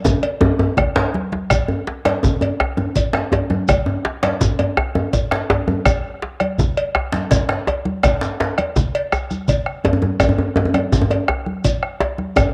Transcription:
0.04 bombo low, djembe slap, djembe tone, low conga, shekere
0.23 bombo rim, cowbell, high conga
0.41 high conga, djembe tone, djembe bass
0.59 djembe tone, djembe bass
0.77 bombo rim, bombo low, cowbell, low conga, djembe bass
0.95 djembe slap, low conga, djembe bass
1.14 djembe slap, high conga
1.32 djembe slap, high conga
1.50 bombo rim, bombo low, cowbell, low conga, djembe bass, shekere
1.68 djembe tone
1.87 djembe slap, high conga
2.05 bombo rim, cowbell, djembe slap, high conga
2.23 bombo low, djembe tone, low conga, shekere
2.41 cowbell, djembe tone
2.60 bombo rim, djembe slap, djembe bass
2.77 bombo rim, djembe tone, high conga
2.96 bombo low, cowbell, low conga, shekere
3.13 bombo rim, djembe slap
3.32 cowbell, djembe slap, djembe tone, high conga
3.50 bombo rim, high conga, djembe tone
3.68 bombo rim, bombo low, cowbell, low conga, djembe bass, shekere
3.86 djembe tone
4.05 djembe slap, high conga
4.23 bombo rim, cowbell, djembe slap, high conga
4.41 bombo low, djembe tone, low conga, shekere
4.59 cowbell, djembe tone
4.77 bombo rim, djembe slap, djembe bass
4.95 bombo rim, high conga, djembe tone
5.13 bombo low, cowbell, low conga, shekere
5.31 bombo rim, djembe slap
5.50 cowbell, djembe slap, djembe tone, high conga
5.68 bombo rim, high conga, djembe tone
5.86 bombo rim, bombo low, cowbell, djembe bass, low conga, shekere
6.22 djembe slap, high conga
6.40 bombo rim, cowbell, high conga
6.58 bombo low, djembe tone, low conga, shekere
6.77 cowbell
6.95 bombo rim, djembe slap, djembe bass
7.12 bombo rim, djembe slap, high conga
7.31 bombo low, cowbell, djembe slap, low conga, shekere
7.49 bombo rim, djembe slap
7.67 cowbell, djembe slap, djembe tone, high conga
7.85 bombo rim, high conga
8.03 bombo rim, bombo low, cowbell, djembe slap, high conga, djembe bass, low conga, shekere
8.21 djembe slap, shekere
8.40 bombo rim, djembe slap
8.58 bombo rim, cowbell, high conga
8.76 bombo rim, bombo low, djembe slap, djembe tone, low conga, shekere
8.94 cowbell, djembe slap
9.12 bombo rim, djembe slap, high conga, djembe bass, shekere
9.30 bombo rim, djembe slap, high conga, shekere
9.48 bombo low, cowbell, low conga, shekere
9.66 bombo rim
9.84 cowbell, djembe slap, high conga, djembe tone
9.93 djembe tone
10.02 high conga, djembe tone
10.20 bombo rim, bombo low, cowbell, djembe tone, low conga, djembe bass, shekere
10.29 djembe tone
10.38 djembe tone
10.56 djembe slap, high conga, djembe tone
10.65 djembe tone
10.74 bombo rim, cowbell, high conga, djembe tone
10.92 bombo low, djembe tone, low conga, shekere
11.01 djembe tone
11.10 cowbell, djembe tone
11.28 bombo rim, djembe slap, djembe bass
11.46 bombo rim, high conga
11.64 bombo low, cowbell, low conga, shekere
11.83 bombo rim
12.00 cowbell, djembe slap, high conga, djembe tone
12.18 bombo rim, high conga
12.36 bombo rim, bombo low, cowbell, djembe tone, low conga, djembe bass, shekere

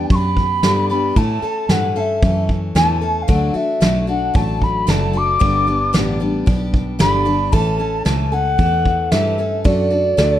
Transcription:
Already playing: G3
0.10 F#2 B3 D4 G4 C#6, kick, open hi-hat
0.15 B5
0.37 kick
0.63 G2 D3 G3 B3 D4 G4, snare, open hi-hat
0.90 G3 B3 D4 G4 B5
1.16 A2 E3 A3 C#4 A4 A5, kick, open hi-hat
1.42 A3 C#4 A4, muted fingered electric bass stroke
1.69 G2 A2 E3 A3 C#4 A4 F#5, snare, open hi-hat
1.96 A3 C#4 A4 F5
2.00 E5
2.22 F#2 E3 A3 C#4 A4, kick, open hi-hat
2.49 kick
2.75 E2 A2 E3 A3 C#4 A4 A5, snare, open hi-hat
3.01 A3 C#4 A4
3.22 F5
3.28 D2 D3 F#3 A3 D4 F#4 F#5, kick, open hi-hat
3.54 A3 D4 F#4 E5, muted fingered electric bass stroke
3.80 B1 D3 F#3 A3 D4 F#4, snare, open hi-hat
4.07 A3 D4 F#4 F#5
4.34 A1 F#3 A3 D4 F#4 A5, kick, open hi-hat
4.62 B5, kick
4.87 F#1 D3 F#3 A3 D4 F#4 A5, snare
5.13 A3 D4 F#4 D6
5.39 G1 G2 D3 G3 B3 D4 G4, kick, open hi-hat
5.67 G3 B3 D4 G4
5.93 A1 G2 D3 G3 B3 D4 G4, snare
6.20 G3 B3 D4 G4
6.46 B1 G3 B3 D4 G4, kick, open hi-hat
6.74 kick
6.99 G1 G2 D3 G3 B3 D4 G4 B5, snare
7.25 G3 B3 D4 G4
7.52 A1 A2 E3 A3 C#4 A4 A5, kick, open hi-hat
7.79 A3 C#4 A4
8.05 C#2 A2 E3 A3 C#4 A4 A5, snare, open hi-hat
8.32 A3 C#4 A4 F#5
8.58 E2 E3 A3 C#4 A4, kick, open hi-hat
8.85 kick
9.11 G2 A2 E3 A3 C#4 A4 E5, snare, open hi-hat
9.38 A3 C#4 A4
9.64 F#2 D3 A3 D4 F#4 D5, kick, open hi-hat
9.91 A3 D4 F#4
10.17 D2 D3 A3 D4 F#4, snare, open hi-hat

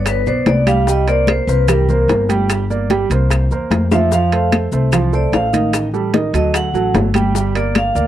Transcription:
Already playing: G1 B3 B4 D5
0.06 B4, high bongo, high conga, high timbale, claves, maracas
0.26 B1 B3 B4 C5 D5, high bongo, high conga, maracas
0.46 C2 D5, high bongo, low bongo, high conga, high timbale, maracas
0.67 G3 G4 F5 G5, high bongo, high conga, high timbale, claves, maracas
0.87 G3 G4 D#5 G5, high bongo, high conga, maracas
1.07 A#3 A#4 C5 D5, high conga, high timbale, maracas
1.27 C5, high bongo, high conga, high timbale, claves, maracas
1.47 C2 A#3 A#4 B4 C5, high conga, maracas
1.68 G3 G4 A#4 G5, high bongo, high conga, low conga, high timbale, claves, maracas
1.89 A#3 A#4 C5, high conga, low conga, maracas
2.08 G1, high bongo, low bongo, high conga, high timbale, maracas
2.29 G3 G4 G5, high conga, high timbale, maracas
2.50 high bongo, high conga, high timbale, claves, maracas
2.70 A#3 A#4 D5, high bongo, high conga, maracas
2.90 G3 G4 G5, high bongo, high conga, high timbale, maracas
3.10 C2 A#3 A#4 C5, high conga, high timbale, maracas
3.30 high bongo, high conga, high timbale, claves, maracas
3.51 E2 A#3 A#4 C5, high bongo, high conga, maracas
3.70 F2, high bongo, low bongo, high conga, high timbale, maracas
3.91 F3 F4 E5 F5, high bongo, high conga, high timbale, claves, maracas
4.12 F3 F4 F5, high bongo, high conga, maracas
4.32 A3 A4 C5, high conga, high timbale, maracas
4.52 high bongo, high conga, high timbale, claves, maracas
4.72 C2 A3 A4 C5, high conga, maracas
4.92 F3 F4 F5, high bongo, high conga, low conga, high timbale, claves, maracas
5.13 A3 A4 C5 D5, high conga, maracas
5.32 A1 F5, high bongo, low bongo, high conga, high timbale, maracas
5.53 D#3 D#4 D#5, high conga, high timbale, maracas
5.73 high bongo, high conga, high timbale, claves, maracas
5.94 G3 G4 A4, high bongo, high conga, maracas
6.14 D#3 D#4 D#5, high bongo, high conga, high timbale, maracas
6.33 D2 F#3 F#4 A4 D#5, high conga, high timbale, maracas
6.54 F#5, high bongo, high conga, high timbale, claves, maracas
6.74 A1 F#3 F#4 A4, high bongo, high conga, maracas
6.94 G1, high bongo, low bongo, high conga, high timbale, low timbale, maracas
7.14 G3 G4 G5, high bongo, high conga, high timbale, claves, maracas
7.35 G3 G4 G5, high bongo, high conga, maracas
7.55 A#3 A#4 D5, high conga, high timbale, maracas
7.75 F5, high bongo, high conga, high timbale, claves, maracas
7.95 D2 A#3 A#4 D5, high conga, maracas

